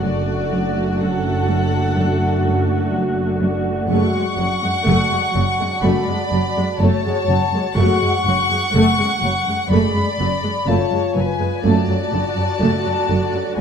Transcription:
0.03 3.86 F#1 soft
0.03 3.86 F#2 medium
0.03 0.32 F#2 medium
0.03 3.72 A3 medium
0.03 3.87 A3 soft
0.03 3.72 D4 medium
0.03 0.98 F#4 soft
0.03 3.86 F#4 soft
0.03 3.87 F#4 soft
0.03 0.98 D5 medium
0.03 3.86 D5 soft
0.03 3.86 F#5 medium
0.52 0.81 F#2 soft
1.00 1.29 F#2 soft
1.00 2.94 A4 medium
1.00 2.94 F#5 medium
1.49 1.78 F#3 soft
1.97 2.26 F#2 medium
2.46 2.75 F#2 soft
2.94 3.23 F#3 soft
3.43 3.71 F#2 soft
3.43 6.29 D5 soft
3.89 3.98 F#1 medium
3.89 3.98 F#2 medium
3.89 4.19 F#2 medium
3.89 4.27 F#3 medium
3.89 4.13 G#3 soft
3.89 4.13 A3 medium
3.89 4.27 F#4 medium
3.89 7.73 F#4 medium
3.89 7.77 F#5 medium
3.89 5.80 F#5 medium
3.89 7.77 A5 soft
3.89 5.80 C#6 medium
4.14 4.23 F#2 soft
4.14 4.22 G#3 medium
4.38 4.46 F#1 soft
4.38 4.46 F#2 soft
4.38 4.68 F#2 soft
4.38 4.46 F#3 soft
4.62 4.71 F#2 medium
4.62 4.70 G#3 soft
4.86 4.95 F#1 medium
4.86 4.94 F#2 medium
4.86 5.16 F#2 soft
4.86 5.09 A3 medium
5.11 5.19 F#2 soft
5.11 5.20 G#3 soft
5.35 5.43 F#1 soft
5.35 5.43 F#2 soft
5.35 5.65 F#3 soft
5.35 5.44 F#3 soft
5.59 5.67 F#2 soft
5.59 5.68 G#3 soft
5.83 5.91 F#1 medium
5.83 6.13 F#2 medium
5.83 5.92 F#2 medium
5.83 6.21 G#3 soft
5.83 6.07 A3 medium
5.83 6.21 F#4 medium
5.83 6.81 D5 medium
5.83 6.80 B5 medium
6.08 6.16 F#2 soft
6.08 6.17 G#3 soft
6.32 6.40 F#1 soft
6.32 6.40 F#2 soft
6.32 6.61 F#2 soft
6.32 6.42 F#3 soft
6.56 6.64 F#2 soft
6.56 6.65 G#3 soft
6.80 6.88 F#1 medium
6.80 6.88 F#2 medium
6.80 7.10 F#3 soft
6.80 7.04 A3 medium
6.80 7.78 C#5 medium
6.80 7.77 A5 medium
7.04 7.12 F#2 soft
7.04 7.14 G#3 soft
7.28 7.37 F#1 medium
7.28 7.36 F#2 soft
7.28 7.58 F#2 soft
7.28 7.38 F#3 soft
7.28 10.15 F#5 soft
7.53 7.61 F#2 soft
7.53 7.63 G#3 medium
7.76 7.85 F#1 medium
7.76 8.06 F#2 medium
7.76 7.85 F#2 medium
7.76 8.14 F#3 medium
7.76 8.02 G#3 medium
7.76 8.01 A3 medium
7.76 8.14 F#4 medium
7.76 9.67 F#5 medium
7.76 9.70 C#6 medium
8.01 8.09 F#2 soft
8.01 8.11 G#3 soft
8.25 8.34 F#1 soft
8.25 8.33 F#2 soft
8.25 8.55 F#2 soft
8.25 8.35 F#3 soft
8.50 8.58 F#2 soft
8.50 8.59 G#3 soft
8.74 8.82 F#1 medium
8.74 8.82 F#2 medium
8.74 9.03 F#2 soft
8.74 8.98 A3 medium
8.98 9.06 F#2 soft
8.98 9.08 G#3 soft
9.22 9.30 F#1 soft
9.22 9.31 F#2 soft
9.22 9.51 F#3 soft
9.22 9.32 F#3 soft
9.47 9.55 F#2 soft
9.47 9.56 G#3 soft
9.70 9.79 F#1 medium
9.70 9.78 F#2 medium
9.70 10.00 F#2 medium
9.70 10.08 G#3 soft
9.70 9.94 A3 medium
9.70 10.08 G#4 medium
9.70 10.68 D5 medium
9.70 10.66 B5 medium
9.94 10.02 F#2 medium
9.94 10.04 G#3 soft
10.18 10.27 F#1 soft
10.18 10.26 F#2 soft
10.18 10.48 F#2 soft
10.18 10.28 F#3 soft
10.43 10.51 F#2 soft
10.43 10.52 G#3 soft
10.67 10.76 F#1 medium
10.67 10.75 F#2 medium
10.67 10.97 F#3 soft
10.67 10.90 A3 medium
10.67 13.54 F4 soft
10.67 11.17 C#5 medium
10.67 13.54 F5 medium
10.67 11.16 A5 medium
10.91 10.99 F#2 soft
10.91 11.00 G#3 soft
11.15 11.25 F#1 soft
11.15 11.23 F#2 soft
11.15 11.45 F#2 soft
11.15 11.24 F#3 soft
11.15 11.65 B4 medium
11.15 11.63 G#5 medium
11.40 11.48 F#2 soft
11.40 11.48 G#3 soft
11.64 11.73 F#1 medium
11.64 11.72 F#2 medium
11.64 11.94 F#2 medium
11.64 12.02 F#3 medium
11.64 11.87 A3 medium
11.64 12.02 A3 medium
11.64 13.61 D4 medium
11.64 13.61 F#4 medium
11.64 13.61 A4 medium
11.64 13.54 D5 medium
11.64 13.61 D5 medium
11.64 13.58 A5 medium
11.88 11.96 F#2 soft
11.88 11.98 F#3 soft
12.12 12.21 F#1 soft
12.12 12.20 F#2 soft
12.12 12.42 F#2 soft
12.12 12.22 D3 soft
12.36 12.44 F#2 soft
12.36 12.46 F#3 soft
12.60 12.69 F#1 medium
12.60 12.68 F#2 medium
12.60 12.90 F#2 soft
12.60 12.84 A3 medium
12.85 12.93 F#2 soft
12.85 12.94 F#3 soft
13.09 13.18 F#1 soft
13.09 13.17 F#2 soft
13.09 13.17 D3 soft
13.09 13.39 F#3 soft
13.33 13.41 F#2 soft
13.33 13.42 F#3 soft
13.57 13.61 F#1 medium
13.57 13.61 F#2 medium
13.57 13.61 A3 soft
13.57 13.61 F#4 soft
13.57 13.61 G#5 medium

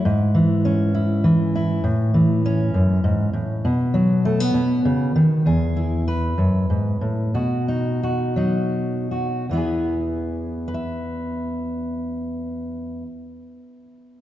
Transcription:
0.00 0.94 E4 medium
0.05 1.81 G#2 medium
0.34 1.23 E3 medium
0.65 1.81 C#4 medium
0.94 1.54 E4 medium
1.24 2.13 E3 medium
1.55 1.82 E4 medium
1.84 2.74 A2 medium
2.14 3.65 E3 medium
2.46 3.62 C#4 medium
2.74 3.04 F#2 medium
3.04 3.33 G#2 medium
3.33 3.64 A2 medium
3.65 4.53 B2 medium
3.94 5.42 F#3 medium
4.25 4.40 A3 medium
4.40 5.46 B3 medium
4.54 4.85 B2 medium
4.85 5.15 C#3 medium
5.16 5.46 D#3 medium
5.46 6.37 E2 medium
5.46 6.07 G#4 medium
5.77 7.30 E4 medium
6.08 7.34 B4 medium
6.38 6.69 F#2 medium
6.70 7.01 G#2 medium
7.01 7.34 A2 medium
7.34 9.49 B2 medium
7.34 8.02 F#4 medium
7.68 8.36 D#4 medium
8.03 9.10 F#4 medium
8.36 9.44 F#3 medium
8.36 9.45 D#4 medium
9.11 9.45 F#4 soft
9.49 13.01 E2 soft
9.49 13.03 E3 soft
9.49 13.05 B3 soft
9.55 10.67 E4 soft
9.55 10.74 G#4 soft
10.68 14.20 B4 medium
10.74 14.21 E5 medium

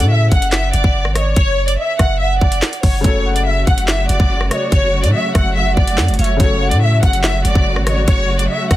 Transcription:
0.00 0.30 A2 loud
0.00 2.99 C#3 medium
0.00 3.00 A3 medium
0.00 3.01 F#4 medium
0.00 3.02 A4 medium
0.00 0.10 D5 medium
0.00 closed hi-hat medium
0.10 0.30 E5 medium
0.32 0.72 F#1 loud
0.32 1.12 F#5 medium
0.32 0.51 F#5 medium
0.32 kick loud
0.32 closed hi-hat medium
0.42 closed hi-hat medium
0.52 0.72 E5 loud
0.52 snare loud
0.52 clap loud
0.73 0.84 F#1 loud
0.73 1.13 D5 medium
0.73 closed hi-hat medium
0.84 1.07 F#1 loud
0.84 kick loud
1.05 1.35 G#1 loud
1.05 cross-stick medium
1.15 1.35 C#5 medium
1.15 1.35 D5 medium
1.15 cross-stick medium
1.15 closed hi-hat medium
1.36 1.77 F#1 loud
1.36 1.66 C#5 loud
1.36 1.76 C#5 loud
1.36 kick loud
1.36 closed hi-hat medium
1.68 1.78 D5 medium
1.68 closed hi-hat medium
1.78 1.98 E5 medium
1.78 2.18 E5 medium
1.99 2.40 F#1 loud
1.99 2.19 F#5 medium
1.99 kick loud
1.99 cross-stick medium
1.99 closed hi-hat medium
2.20 2.39 E5 medium
2.20 3.00 F#5 medium
2.41 2.62 F#1 loud
2.41 2.81 D5 medium
2.41 kick loud
2.52 closed hi-hat medium
2.62 snare loud
2.62 clap medium
2.73 closed hi-hat medium
2.83 3.03 F#1 loud
2.83 3.02 C#5 medium
2.83 kick loud
2.83 closed hi-hat medium
2.83 open hi-hat medium
3.01 3.65 F#1 loud
3.01 6.34 C#3 medium
3.01 6.37 C#3 medium
3.01 8.77 F#3 medium
3.01 6.35 A3 medium
3.01 8.77 A3 medium
3.01 6.37 F#4 medium
3.01 3.34 C#5 loud
3.01 kick loud
3.01 closed hi-hat medium
3.06 6.37 F#4 medium
3.06 6.38 A4 medium
3.25 3.45 F#5 medium
3.36 3.46 D5 medium
3.36 closed hi-hat medium
3.46 3.66 E5 medium
3.67 4.08 F#1 loud
3.67 4.47 F#5 medium
3.67 3.87 F#5 medium
3.67 kick loud
3.67 closed hi-hat medium
3.78 closed hi-hat medium
3.88 4.08 E5 medium
3.88 snare loud
3.88 clap loud
4.09 4.19 F#1 loud
4.09 4.49 D5 medium
4.09 closed hi-hat medium
4.20 4.50 F#1 loud
4.20 kick loud
4.41 cross-stick medium
4.51 4.71 C#5 medium
4.51 4.71 D5 medium
4.51 cross-stick medium
4.51 closed hi-hat medium
4.72 5.05 F#1 loud
4.72 5.02 C#5 loud
4.72 5.12 C#5 loud
4.72 kick loud
4.72 closed hi-hat medium
5.04 5.14 A2 loud
5.04 5.13 D5 medium
5.04 closed hi-hat medium
5.14 5.54 E5 medium
5.14 5.34 E5 medium
5.35 5.75 F#1 loud
5.35 5.55 F#5 medium
5.35 kick loud
5.35 cross-stick loud
5.35 closed hi-hat medium
5.56 5.75 E5 loud
5.56 6.15 F#5 medium
5.77 6.00 F#1 loud
5.77 6.16 D5 medium
5.77 kick loud
5.88 closed hi-hat medium
5.98 6.10 F#2 loud
5.98 snare loud
5.98 clap medium
6.08 6.18 F#1 loud
6.08 closed hi-hat medium
6.14 closed hi-hat medium
6.19 6.39 F#1 loud
6.19 6.38 C#5 medium
6.19 6.39 E5 medium
6.19 closed hi-hat medium
6.24 closed hi-hat medium
6.37 6.73 F#1 loud
6.37 8.77 C#3 medium
6.37 8.77 A3 medium
6.37 8.77 F#4 medium
6.37 6.69 C#5 loud
6.37 kick loud
6.37 closed hi-hat medium
6.41 8.77 F#4 medium
6.41 8.77 A4 medium
6.61 6.81 F#5 medium
6.71 7.01 A2 loud
6.71 6.81 D5 medium
6.71 closed hi-hat medium
6.82 7.01 E5 medium
6.82 7.02 E5 medium
7.03 7.43 F#1 loud
7.03 7.83 F#5 medium
7.03 7.22 F#5 medium
7.03 kick loud
7.03 closed hi-hat medium
7.13 closed hi-hat medium
7.24 7.43 E5 loud
7.24 snare loud
7.24 clap loud
7.45 7.55 F#1 loud
7.45 7.84 D5 medium
7.45 closed hi-hat medium
7.55 7.78 F#1 loud
7.55 kick loud
7.76 8.06 G#1 loud
7.76 cross-stick medium
7.87 8.06 C#5 medium
7.87 8.07 D5 medium
7.87 cross-stick medium
7.87 closed hi-hat medium
8.08 8.48 F#1 loud
8.08 8.37 C#5 loud
8.08 8.47 C#5 loud
8.08 kick loud
8.08 closed hi-hat medium
8.39 8.49 D5 medium
8.39 closed hi-hat medium
8.50 8.69 E5 medium
8.50 8.77 E5 medium
8.71 8.77 F#1 loud
8.71 8.77 F#5 medium
8.71 kick loud
8.71 cross-stick medium
8.71 closed hi-hat medium

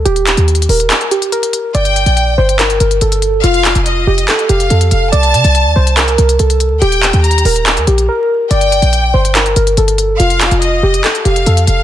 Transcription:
0.05 0.36 D#1 loud
0.05 0.65 G4 loud
0.05 closed hi-hat medium
0.16 closed hi-hat medium
0.27 clap loud
0.27 closed hi-hat medium
0.37 0.68 D#2 loud
0.37 closed hi-hat medium
0.48 closed hi-hat soft
0.55 closed hi-hat medium
0.62 closed hi-hat medium
0.69 0.90 D#1 loud
0.69 1.09 A#4 medium
0.69 open hi-hat medium
0.80 closed hi-hat medium
0.90 clap loud
0.90 closed hi-hat medium
1.01 closed hi-hat medium
1.11 1.30 G4 medium
1.11 closed hi-hat medium
1.22 closed hi-hat medium
1.32 1.72 A#4 medium
1.32 closed hi-hat medium
1.43 closed hi-hat medium
1.53 closed hi-hat medium
1.75 2.05 G1 loud
1.75 2.34 D5 loud
1.75 2.55 G5 loud
1.75 closed hi-hat medium
1.85 closed hi-hat medium
1.96 closed hi-hat medium
2.06 2.37 A#1 loud
2.06 closed hi-hat medium
2.17 closed hi-hat medium
2.38 2.79 G1 loud
2.38 2.57 C5 medium
2.49 closed hi-hat medium
2.59 2.78 A#4 medium
2.59 clap loud
2.59 closed hi-hat medium
2.70 closed hi-hat medium
2.80 3.01 G1 loud
2.80 2.99 A#4 medium
2.80 closed hi-hat medium
2.91 closed hi-hat medium
3.01 3.42 G1 loud
3.01 3.41 A4 medium
3.01 closed hi-hat medium
3.12 closed hi-hat medium
3.22 closed hi-hat medium
3.44 3.74 F1 loud
3.44 4.03 F4 loud
3.44 3.83 F5 loud
3.44 closed hi-hat medium
3.54 closed hi-hat medium
3.65 clap loud
3.65 closed hi-hat medium
3.75 4.06 F1 loud
3.75 closed hi-hat medium
3.86 4.46 D#5 medium
3.86 closed hi-hat medium
4.07 4.27 F1 loud
4.07 4.26 G4 medium
4.18 closed hi-hat medium
4.28 4.47 A4 medium
4.28 clap loud
4.28 closed hi-hat medium
4.39 closed hi-hat medium
4.49 4.70 F1 loud
4.49 4.68 G4 medium
4.49 4.89 F5 medium
4.49 closed hi-hat medium
4.60 closed hi-hat medium
4.70 4.91 F2 loud
4.70 5.10 A4 medium
4.70 closed hi-hat medium
4.81 closed hi-hat medium
4.91 5.12 F1 loud
4.91 5.12 F5 medium
4.91 closed hi-hat medium
5.12 5.35 C2 loud
5.12 5.72 D5 loud
5.12 5.93 A5 loud
5.12 closed hi-hat medium
5.23 closed hi-hat medium
5.34 5.44 C3 loud
5.34 closed hi-hat medium
5.44 5.67 C2 loud
5.44 closed hi-hat medium
5.55 closed hi-hat medium
5.66 5.76 D#2 loud
5.76 6.17 C2 loud
5.76 5.95 C5 medium
5.87 closed hi-hat medium
5.97 6.16 A#4 medium
5.97 clap loud
5.97 closed hi-hat medium
6.08 closed hi-hat medium
6.18 6.39 C2 loud
6.18 6.37 A#4 medium
6.18 closed hi-hat medium
6.29 closed hi-hat medium
6.39 6.73 C2 loud
6.39 6.79 A4 medium
6.39 closed hi-hat medium
6.50 closed hi-hat medium
6.60 closed hi-hat medium
6.71 6.81 D2 loud
6.82 7.12 D#1 loud
6.82 7.41 G4 loud
6.82 7.21 G5 loud
6.82 closed hi-hat medium
6.92 closed hi-hat medium
7.03 clap medium
7.03 closed hi-hat medium
7.13 7.44 D#2 loud
7.13 closed hi-hat medium
7.24 7.64 A#5 medium
7.24 closed hi-hat soft
7.31 closed hi-hat medium
7.38 closed hi-hat medium
7.45 7.78 D#1 loud
7.45 7.85 A#4 medium
7.45 open hi-hat medium
7.56 closed hi-hat medium
7.66 clap loud
7.66 closed hi-hat medium
7.77 7.87 D#2 loud
7.77 closed hi-hat medium
7.87 8.08 A#1 loud
7.87 8.06 G4 medium
7.87 closed hi-hat medium
7.98 closed hi-hat medium
8.08 8.48 A#4 medium
8.51 8.81 G1 loud
8.51 9.10 D5 medium
8.51 9.31 G5 loud
8.51 closed hi-hat medium
8.61 closed hi-hat medium
8.72 closed hi-hat medium
8.82 9.13 A#1 loud
8.82 closed hi-hat medium
8.93 closed hi-hat medium
9.14 9.55 G1 loud
9.14 9.33 C5 medium
9.25 closed hi-hat medium
9.35 9.54 A#4 medium
9.35 clap loud
9.35 closed hi-hat medium
9.46 closed hi-hat medium
9.56 9.77 G1 loud
9.56 9.76 A#4 medium
9.56 closed hi-hat medium
9.67 closed hi-hat medium
9.77 10.18 G1 loud
9.77 10.17 A4 medium
9.77 closed hi-hat medium
9.88 closed hi-hat medium
9.98 closed hi-hat medium
10.20 10.50 F1 loud
10.20 10.79 F4 medium
10.20 10.59 F5 loud
10.20 closed hi-hat medium
10.30 closed hi-hat medium
10.41 clap loud
10.41 closed hi-hat medium
10.51 10.82 F1 loud
10.51 closed hi-hat medium
10.62 11.22 D#5 medium
10.62 closed hi-hat medium
10.83 11.03 F1 loud
10.83 11.02 G4 medium
10.94 closed hi-hat medium
11.04 11.23 A4 medium
11.04 clap loud
11.04 closed hi-hat medium
11.15 closed hi-hat medium
11.25 11.46 F1 loud
11.25 11.44 G4 medium
11.25 11.65 F5 medium
11.25 closed hi-hat medium
11.36 closed hi-hat medium
11.46 11.67 F2 loud
11.46 11.83 A4 medium
11.46 closed hi-hat medium
11.57 closed hi-hat medium
11.67 11.83 F1 loud
11.67 11.83 F5 medium
11.67 closed hi-hat medium

